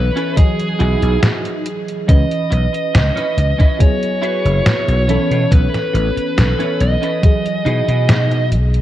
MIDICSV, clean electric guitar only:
0, 0, Header, 1, 3, 480
1, 0, Start_track
1, 0, Tempo, 857143
1, 1170, Time_signature, 4, 2, 24, 8
1, 4936, End_track
2, 0, Start_track
2, 0, Title_t, "Clean electric guitar"
2, 0, Program_c, 0, 27
2, 88, Note_on_c, 0, 61, 89
2, 92, Note_on_c, 0, 64, 82
2, 95, Note_on_c, 0, 69, 85
2, 99, Note_on_c, 0, 71, 97
2, 207, Note_off_c, 0, 61, 0
2, 208, Note_off_c, 0, 64, 0
2, 210, Note_off_c, 0, 69, 0
2, 212, Note_off_c, 0, 71, 0
2, 443, Note_on_c, 0, 63, 113
2, 447, Note_on_c, 0, 64, 103
2, 451, Note_on_c, 0, 66, 106
2, 454, Note_on_c, 0, 68, 124
2, 927, Note_off_c, 0, 63, 0
2, 928, Note_off_c, 0, 64, 0
2, 930, Note_off_c, 0, 66, 0
2, 932, Note_off_c, 0, 68, 0
2, 1767, Note_on_c, 0, 61, 90
2, 1771, Note_on_c, 0, 63, 84
2, 1775, Note_on_c, 0, 64, 82
2, 1778, Note_on_c, 0, 71, 100
2, 1886, Note_off_c, 0, 61, 0
2, 1888, Note_off_c, 0, 63, 0
2, 1890, Note_off_c, 0, 64, 0
2, 1891, Note_off_c, 0, 71, 0
2, 2007, Note_on_c, 0, 61, 90
2, 2010, Note_on_c, 0, 63, 82
2, 2014, Note_on_c, 0, 64, 84
2, 2017, Note_on_c, 0, 71, 98
2, 2126, Note_off_c, 0, 61, 0
2, 2127, Note_off_c, 0, 63, 0
2, 2129, Note_off_c, 0, 64, 0
2, 2131, Note_off_c, 0, 71, 0
2, 2363, Note_on_c, 0, 64, 114
2, 2366, Note_on_c, 0, 66, 106
2, 2369, Note_on_c, 0, 68, 103
2, 2373, Note_on_c, 0, 71, 127
2, 2840, Note_off_c, 0, 64, 0
2, 2841, Note_off_c, 0, 66, 0
2, 2843, Note_on_c, 0, 61, 91
2, 2847, Note_off_c, 0, 71, 0
2, 2847, Note_on_c, 0, 64, 80
2, 2848, Note_off_c, 0, 68, 0
2, 2850, Note_on_c, 0, 69, 85
2, 2854, Note_on_c, 0, 71, 102
2, 3234, Note_off_c, 0, 61, 0
2, 3236, Note_off_c, 0, 64, 0
2, 3238, Note_off_c, 0, 69, 0
2, 3240, Note_off_c, 0, 71, 0
2, 3689, Note_on_c, 0, 61, 89
2, 3693, Note_on_c, 0, 64, 81
2, 3696, Note_on_c, 0, 69, 81
2, 3700, Note_on_c, 0, 73, 96
2, 3807, Note_off_c, 0, 61, 0
2, 3809, Note_off_c, 0, 64, 0
2, 3811, Note_off_c, 0, 69, 0
2, 3812, Note_off_c, 0, 73, 0
2, 3930, Note_on_c, 0, 61, 91
2, 3933, Note_on_c, 0, 64, 82
2, 3936, Note_on_c, 0, 69, 84
2, 3940, Note_on_c, 0, 71, 100
2, 4047, Note_off_c, 0, 61, 0
2, 4049, Note_off_c, 0, 64, 0
2, 4051, Note_off_c, 0, 69, 0
2, 4052, Note_off_c, 0, 71, 0
2, 4284, Note_on_c, 0, 63, 113
2, 4288, Note_on_c, 0, 64, 105
2, 4291, Note_on_c, 0, 66, 104
2, 4295, Note_on_c, 0, 68, 120
2, 4767, Note_off_c, 0, 63, 0
2, 4769, Note_off_c, 0, 64, 0
2, 4770, Note_off_c, 0, 66, 0
2, 4772, Note_off_c, 0, 68, 0
2, 4936, End_track
3, 0, Start_track
3, 0, Title_t, "Muted clean electric guitar strokes"
3, 1403, Note_on_c, 9, 29, 115
3, 1459, Note_off_c, 9, 29, 0
3, 1528, Note_on_c, 9, 29, 34
3, 1584, Note_off_c, 9, 29, 0
3, 1643, Note_on_c, 9, 29, 34
3, 1699, Note_off_c, 9, 29, 0
3, 3323, Note_on_c, 9, 29, 117
3, 3379, Note_off_c, 9, 29, 0
3, 3450, Note_on_c, 9, 29, 33
3, 3506, Note_off_c, 9, 29, 0
3, 3565, Note_on_c, 9, 29, 33
3, 3621, Note_off_c, 9, 29, 0
3, 4936, End_track
0, 0, End_of_file